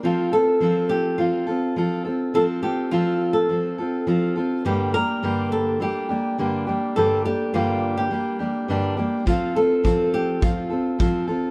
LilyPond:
<<
  \new Staff \with { instrumentName = "Nylon-string guitar" } { \time 4/4 \key f \major \tempo 4 = 104 f'8 a'4 g'8 f'4. r8 | a'8 g'8 f'8. a'4.~ a'16 r8 | g'8 bes'4 a'8 g'4. r8 | a'8 g'8 f'8. g'4.~ g'16 r8 |
f'8 a'4 g'8 f'4. r8 | }
  \new Staff \with { instrumentName = "Steel-string acoustic guitar" } { \time 4/4 \key f \major <f c' f' a'>8 <c' f' a'>8 <f c' f' a'>4 <f c' f' a'>8 <c' f' a'>8 <f c' f' a'>8 <c' f' a'>8 | <f c' f' a'>8 <c' f' a'>8 <f c' f' a'>4 <f c' f' a'>8 <c' f' a'>8 <f c' f' a'>8 <c' f' a'>8 | <g, d g bes d' g'>8 <g bes d' g'>8 <g, d g bes d' g'>4 <g bes d' g'>8 <g bes d' g'>8 <g, d g bes d' g'>8 <g bes d' g'>8 | <g, d g bes d' g'>8 <g bes d' g'>8 <g, d g bes d' g'>4 <g bes d' g'>8 <g bes d' g'>8 <g, d g bes d' g'>8 <g bes d' g'>8 |
<f c' f' a'>8 <c' f' a'>8 <f c' f' a'>4 <f c' f' a'>8 <c' f' a'>8 <f c' f' a'>8 <c' f' a'>8 | }
  \new DrumStaff \with { instrumentName = "Drums" } \drummode { \time 4/4 r4 r4 r4 r4 | r4 r4 r4 r4 | r4 r4 r4 r4 | r4 r4 r4 r4 |
bd4 bd4 bd4 bd4 | }
>>